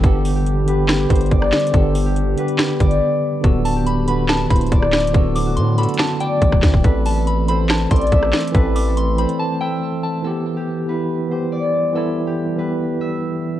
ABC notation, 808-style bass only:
X:1
M:4/4
L:1/16
Q:1/4=141
K:Em
V:1 name="808-style bass" clef=bass
G,,,8- G,,,2 G,,,2 G,,,2 z2 | G,,,6 z4 G,,,2 z4 | D,,,8- D,,,2 D,,,2 D,,,4 | D,,,4 A,,3 z4 z A,,, D,,, D,, D,,, |
A,,,8- A,,,2 A,,,2 A,,,2 z2 | A,,,6- A,,, z8 z | z16 | z16 |]